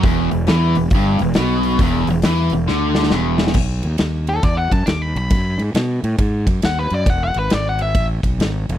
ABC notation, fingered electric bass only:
X:1
M:4/4
L:1/8
Q:"Swing" 1/4=136
K:E
V:1 name="Fingered electric bass" clef=bass
E,,, E,,, E,, E,,, =G,,, E,,, B,,,2 | E,,, E,,, E,, E,,, =D,,2 E,,,2 | B,,, D,, D,,2 E,, F,, D,, B,,, | F,, G,, B,, A,, G,, F,, D,, F,, |
E,,, G,,, G,,,2 A,,, B,,, G,,, E,,, |]